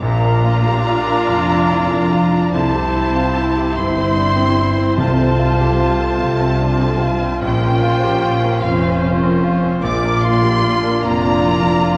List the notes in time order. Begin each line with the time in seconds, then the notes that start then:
0.01 A#1 A#2 A#3 D4 F4 D5 F5 A#5
0.23 D4 A#4
0.44 F4
0.67 G4 A#4
0.88 F4
1.08 D4 A#4
1.28 F1 F2 A#3 F4
1.50 D4
1.71 E4 F4
1.92 D4 A#4
2.13 F4
2.33 D4
2.51 C2 C3 A3 C4 E4 C5 A5
2.75 C4 G4
2.95 E4
3.16 F4 G4
3.37 E4
3.57 C4 G4
3.75 G1 G2 A3 E4 C5 C6
3.96 C4
4.17 D4 E4
4.37 C4 G4
4.57 E4
4.77 C4
4.97 C2 C3 A3 F4 C5 A5
5.18 C4 A4
5.39 F4
5.60 G4 A4
5.79 F4
6.00 C4 A4
6.20 C2 C3 A3 F4
6.41 C4
6.61 D4 F4
6.81 C4 A4
7.02 F4
7.22 C4
7.41 A#1 A#2 C4 C#4 F4 C5 G5
7.63 C#4 A#4
7.83 F4
8.03 G4 A#4
8.23 F4
8.43 C#4 A#4
8.62 F1 F2 C4 F4 C5 F5
8.82 C4 C#4
9.02 C#4 F4
9.21 C4 A#4
9.42 F4
9.62 C4 C#4
9.82 A#1 A#2 A#3 D4 F4 D5 D6
10.03 D4 A#4
10.23 F4 C6
10.43 G4 A#4
10.62 F4
10.82 D4 A#4
11.02 F1 F2 A#3 F4 D5 A#5
11.22 D4
11.43 E4 F4
11.62 D4 A#4
11.82 F4